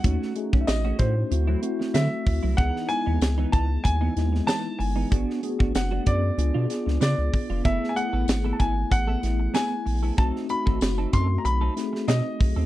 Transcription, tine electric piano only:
X:1
M:4/4
L:1/8
Q:"Swing 16ths" 1/4=95
K:C#m
V:1 name="Tine electric piano"
[A,CDF] [A,CDG]3 [A,=CEF] [A,CEF]3 | [B,DEG] [G,B,DE]3 z [G,B,DE]3 | [B,=DFG] [A,B,DFG]3 [B,D^EG] [B,DEG]3 | [A,B,EG] [A,B,EG]3 z [A,B,EG]3 |
[A,=CDF] [A,CDF]3 z [A,CDG]3 |]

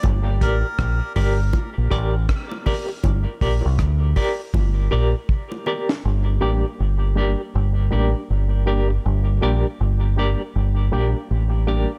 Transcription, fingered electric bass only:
X:1
M:4/4
L:1/16
Q:"Swing 16ths" 1/4=80
K:Gm
V:1 name="Fingered electric bass" clef=bass
G,,,2 A,,, z B,,, z G,,,2 z B,,, A,,,2 z4 | G,,, z B,,, C,, D,,2 z2 G,,,2 B,,, z4 z | G,,,2 A,,, z G,,,3 z G,,,2 A,,, z G,,,4 | G,,,2 B,,, z G,,,3 z G,,,2 B,,, z A,,,3 z |]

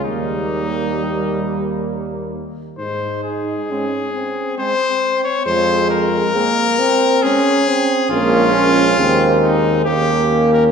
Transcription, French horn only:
X:1
M:3/4
L:1/8
Q:1/4=67
K:Ab
V:1 name="French horn"
G,4- G, z | E2 D C3 | A,2 B, C D C | B, D C z B,2 |]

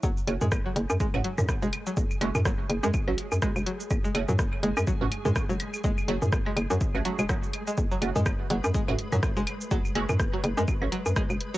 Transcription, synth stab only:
X:1
M:4/4
L:1/16
Q:"Swing 16ths" 1/4=124
K:F#m
V:1 name="Synth stab"
z2 [A,CF] z6 [A,CF] z6 | z2 [A,CF] z6 [A,CF] z6 | z2 [A,CF] z6 [A,CF] z6 | z2 [A,CF] z6 [A,CF] [A,CF] z4 z |
z2 [A,CF] z6 [A,CF] z6 | z2 [A,CF] z6 [A,CF] z6 |]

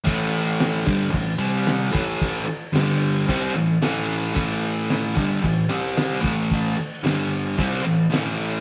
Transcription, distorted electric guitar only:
X:1
M:4/4
L:1/8
Q:1/4=112
K:Glyd
V:1 name="Distorted electric guitar" clef=bass
[A,,E,A,]3 [G,,D,G,] [A,,E,] [=C,G,=C]2 [A,,E,A,]- | [A,,E,A,] z [G,,D,G,]2 [=C,G,=C] [A,,E,] [A,,E,A,]2 | [A,,E,A,]3 [G,,D,G,] [A,,E,] [=C,G,=C]2 [A,,E,A,]- | [A,,E,A,] z [G,,D,G,]2 [=C,G,=C] [A,,E,] [A,,E,A,]2 |]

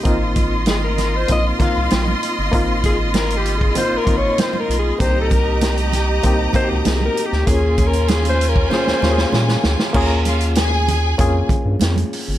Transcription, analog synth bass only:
X:1
M:4/4
L:1/16
Q:1/4=97
K:Ab
V:1 name="Analog synth bass" clef=bass
A,,,8 B,,,2 z C,, B,,,2 z G,,, | A,,,8 z A,,, A,,,2 z2 _C,,2 | C,,8 C,,2 z D,, C,,2 z =D,, | E,,8 z E,, E,,2 B,,2 =D,, z |
E,,8 F,,2 z G,, F,,2 z G,,, |]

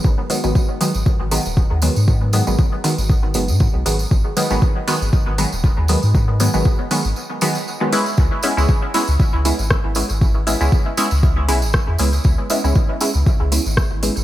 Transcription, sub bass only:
X:1
M:4/4
L:1/16
Q:"Swing 16ths" 1/4=118
K:G#m
V:1 name="Sub bass" clef=bass
G,,, z2 G,,, z3 G,,, z G,,,2 D,,,2 D,,2 G,,- | G,,3 G,,, z3 G,,,3 F,,, G,,2 B,,, G,,,2 | G,,, z2 G,,, z3 G,,, z G,,,2 D,,,2 D,,2 G,,- | G,,3 G,,, z3 G,,, z8 |
C,, z2 C,, z3 C,, z C,,2 G,,,2 G,,,2 G,,,- | G,,,3 C,, z3 C,,3 B,,, G,,,2 E,, C,,2 | C,, z2 C,, z3 C,, z C,,2 G,,,2 G,,,2 G,,, |]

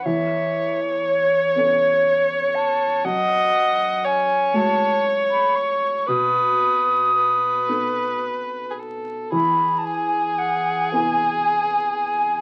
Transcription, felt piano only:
X:1
M:6/8
L:1/8
Q:3/8=39
K:E
V:1 name="Felt piano"
E,,3 [B,CA]3 | F,,3 [G,A,F]3 | B,,3 [B,DA]3 | E,,3 [B,EG]3 |]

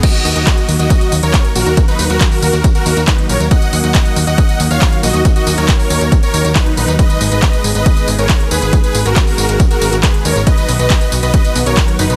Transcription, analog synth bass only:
X:1
M:4/4
L:1/16
Q:1/4=138
K:Ebm
V:1 name="Analog synth bass" clef=bass
z2 E,, E,, z2 E,, E,, z2 E,, E,, z2 B,,, E,, | z2 E,, E,, z2 E,, E,, z2 E,, E,, z2 B,,, E,, | z2 E,, E,, z2 E,, E,, z2 E,, E,, z2 B,,, E,, | z2 E,, E,, z2 E,, E,, z2 E,, E,, z2 B,,, E,, |
z2 A,,, A,,, z2 A,,, A,,, z2 A,,, A,,, z2 E,, A,,, | z2 A,,, A,,, z2 A,,, A,,, z2 A,,, A,,, z2 E,, A,,, | z2 =B,,, B,,, z2 B,,, B,,, z2 B,,, B,,, z2 ^F,,, B,,, |]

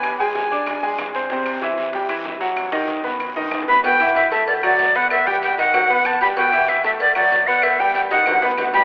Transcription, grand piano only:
X:1
M:4/4
L:1/8
Q:1/4=190
K:Em
V:1 name="Grand piano"
[B,Bb] [^G,^G^g]2 [Ddd']2 [G,Gg]2 [Ccc'] | [C,Cc]2 [E,Ee]2 [G,Gg] [E,Ee]2 [F,Ff]- | [F,Ff] [^D,^D^d]2 [B,Bb]2 [D,Dd]2 [B,Bb] | [B,,B,B] [E,Ee]2 [A,Aa]2 [F,Ff]2 [B,Bb]- |
[B,Bb] [G,Gg]2 [^D,^D^d] [F,Ff] [B,Bb]2 [G,Gg] | [B,,B,B] [E,Ee]2 [A,Aa]2 [F,Ff]2 [B,Bb]- | [B,Bb] [G,Gg]2 [^D,^D^d] [F,Ff] [B,Bb]2 [G,Gg] |]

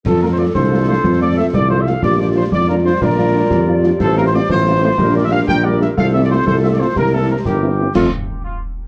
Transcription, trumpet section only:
X:1
M:6/8
L:1/16
Q:3/8=122
K:F
V:1 name="Trumpet section"
A2 B c d2 c4 c2- | c2 d2 e2 d2 c e f2 | d2 d2 c2 d2 B2 c2 | B8- B2 z2 |
A2 B c d2 c4 c2- | c2 d e f2 g2 d2 e2 | f2 e d c2 c2 e d c2 | B2 A2 B2 G6 |
F2 z8 z2 |]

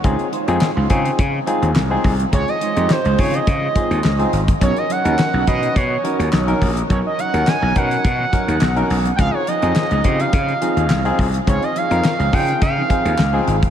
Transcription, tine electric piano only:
X:1
M:4/4
L:1/16
Q:1/4=105
K:C#dor
V:1 name="Tine electric piano"
[^B,D^EG]2 z [B,DEG]2 z [B,DEG]2 z2 [B,DEG]2 z [B,DEG]2 z | [^B,D^EG]2 z [B,DE=G]2 z [B,DE^G]2 z2 [B,DEG]2 z [B,DEG]2 z | [CDFA]2 z [CDFA]2 z [CDFB]2 z2 [CDFA]2 z [CDFA]2 z | [CDFA]2 z [CDFA]2 z [CDFA]2 z2 [CDFA]2 z [CDFA]2 z |
[^B,D^EG]2 z [B,DEG]2 z [B,DE=G]2 z2 [B,DE^G]2 z [B,DEG]2 z | [^B,D^EG]2 z [B,DEA]2 z [B,DEG]2 z2 [B,DEG]2 z [B,DEG]2 z |]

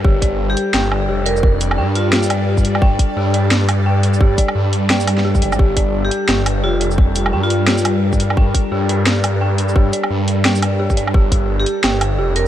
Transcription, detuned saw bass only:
X:1
M:4/4
L:1/16
Q:"Swing 16ths" 1/4=173
K:Gm
V:1 name="Detuned saw bass" clef=bass
G,,,6 z2 G,,,4 F,,,4- | F,,,4 G,,12- | G,,2 z2 G,,12- | G,,2 z2 G,,8- G,,2 F,,, A,,, |
G,,,6 z2 G,,,4 F,,,4- | F,,,4 G,,12- | G,,2 z2 G,,12- | G,,2 z2 G,,12 |
G,,,6 z2 G,,,4 F,,,4 |]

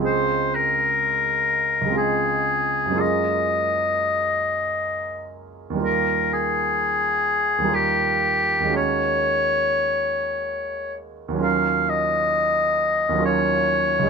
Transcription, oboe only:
X:1
M:3/4
L:1/8
Q:1/4=64
K:Db
V:1 name="Oboe"
c B3 A2 | e4- e z | B A3 =G2 | d4- d z |
f e3 d2 |]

